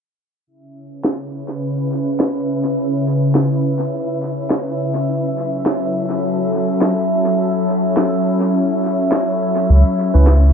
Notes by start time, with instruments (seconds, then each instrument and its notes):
0.47 ambient pad C#3, synth texture E4 E5
0.60 ambient pad C#4
0.81 ambient pad B4
1.05 snare
1.50 ambient pad E5
2.20 snare
3.35 snare
4.50 snare
5.09 ambient pad F#3
5.32 ambient pad A4
5.66 snare
6.82 snare
7.97 snare
9.12 snare
9.69 sub bass C#2, ambient pad C#3
10.09 ambient pad B4
10.14 sub bass C#2, tine electric piano C#4 E4 B4
10.27 snare